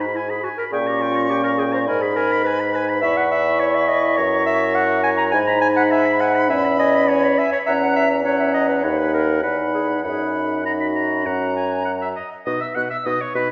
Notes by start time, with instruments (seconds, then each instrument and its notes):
Already playing: bassoon G#2, french horn D#4, flute B5
0.01 oboe B5
0.14 clarinet E4, oboe G#5
0.29 clarinet G#4, oboe B5
0.43 clarinet F#4, oboe G#5
0.57 clarinet A#4, oboe B5
0.71 bassoon A#2, french horn C#4, clarinet G#4, oboe G5, flute C#6
0.86 clarinet G4, oboe A#5
1.01 clarinet F4, oboe G5
1.16 oboe A#5
1.29 clarinet G4, oboe G5
1.44 clarinet A#4, oboe A#5
1.58 clarinet G#4, oboe G5
1.72 clarinet C5, oboe A#5
1.87 bassoon G#2, french horn D#4, clarinet A#4, oboe G#5, flute B5
2.02 clarinet G#4, oboe B5
2.15 clarinet A#4, oboe G#5
2.32 oboe B5
2.44 clarinet B4, oboe G#5
2.60 oboe B5
2.73 clarinet B4, oboe G#5
2.90 oboe B5
3.02 bassoon E2, french horn E4, clarinet E5, oboe B5, flute C#6
3.17 clarinet F#5, oboe B5
3.31 clarinet E5, oboe B5
3.46 oboe B5
3.59 clarinet C#5, oboe B5
3.75 clarinet E5, oboe B5
3.88 clarinet D#5, oboe B5
4.04 oboe B5
4.17 bassoon F#2, clarinet C#5, oboe A#5
4.32 oboe A#5
4.46 clarinet E5, oboe A#5
4.61 oboe A#5
4.75 clarinet F#5, oboe A#5
4.91 oboe A#5
5.04 clarinet G#5, oboe A#5
5.17 clarinet A#5, oboe A#5
5.32 bassoon G#2, french horn D#4, clarinet G#5, oboe G#5, flute B5
5.47 clarinet A#5, oboe B5
5.61 clarinet G#5, oboe G#5
5.76 clarinet F#5, oboe B5
5.91 clarinet E5, oboe G#5
6.06 oboe B5
6.20 clarinet F#5, oboe G#5
6.36 oboe B5
6.49 bassoon E2, french horn C#4, clarinet E5, oboe G#5
6.65 oboe B5
6.78 clarinet D#5, oboe G#5
6.95 oboe B5
7.08 clarinet C#5, oboe G#5
7.24 oboe B5
7.38 clarinet E5, oboe G#5
7.52 clarinet C#5, oboe B5
7.66 bassoon E2, french horn C#4, clarinet E5, oboe F#5, flute A#5
7.82 clarinet F#5
7.96 clarinet E5
8.25 french horn C#4, clarinet C#5, oboe F#5, flute A#5
8.39 clarinet E5
8.54 clarinet D#5
8.68 clarinet B4
8.83 bassoon D#2, french horn D#4, clarinet C#5, oboe F#5, flute B5
8.98 clarinet B4
9.13 clarinet A#4
9.43 bassoon E2, french horn D#4, clarinet B4, oboe F#5, flute B5
9.74 clarinet G#4
10.04 bassoon F#2, french horn D#4, clarinet G#4, oboe F#5, flute B5
10.64 french horn D#4, clarinet F#4, oboe A#5, flute B5
10.81 oboe B5
10.96 oboe A#5
11.25 bassoon F#2, french horn C#4, oboe F#5, flute A#5
11.57 oboe G#5
11.85 oboe F#5
12.01 oboe E5
12.16 oboe D#5
12.46 bassoon B2, french horn D#4, clarinet B4, oboe D#5, flute D#6
12.61 oboe E5, flute E6
12.75 bassoon B2, french horn D#4, clarinet B4, oboe F#5, flute F#6
12.90 oboe E5, flute E6
13.05 bassoon B2, french horn D#4, clarinet B4, oboe D#5, flute D#6
13.21 oboe C#5, flute C#6
13.35 bassoon B2, french horn D#4, oboe B4, clarinet B4, flute B5